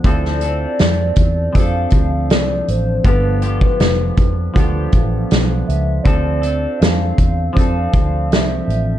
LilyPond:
<<
  \new Staff \with { instrumentName = "Soft synth lead" } { \time 4/4 \key d \dorian \tempo 4 = 80 d''2 f''4 d''8 c''8 | b'8 b'2 r4 e''8 | d''4 f''4 f''4 e''4 | }
  \new Staff \with { instrumentName = "Synth keys" } { \time 4/4 \key d \dorian <c' e' f' a'>4. r8 <c' d' f' a'>4. r8 | <b d' f' a'>4. r8 <b d' f' a'>4. r8 | <c' d' f' a'>4. r8 <c' d' f' a'>4. r8 | }
  \new Staff \with { instrumentName = "Clean electric guitar" } { \time 4/4 \key d \dorian <d f c' d' a'>8 <c' d' a'>4. <f c' d' a'>2 | <g, d f b f' g'>8 <f b f' g'>4. <f b f' g'>2 | <d f c' d' a'>8 <c' d' a'>4. <f c' d' a'>2 | }
  \new Staff \with { instrumentName = "Fingered electric bass" } { \clef bass \time 4/4 \key d \dorian d,4 f,8 e,8 f,8 d,8 c,8 a,,8 | g,,4 f,,8 f,8 d,8 a,,8 b,,8 cis,8 | d,4 f,8 e,8 f,8 d,8 c,8 a,,8 | }
  \new DrumStaff \with { instrumentName = "Drums" } \drummode { \time 4/4 <hh bd>16 sn16 hh8 <hh sn>8 <hh bd>8 <hh bd>8 <hh bd>8 <hh sn>8 hh8 | <hh bd>8 hh16 bd16 <hh sn>8 <hh bd>8 <hh bd>8 <hh bd>8 <hh sn>8 hh8 | <hh bd>8 hh8 <hh sn>8 <hh bd>8 <hh bd>8 <hh bd>8 <hh sn>8 hh8 | }
>>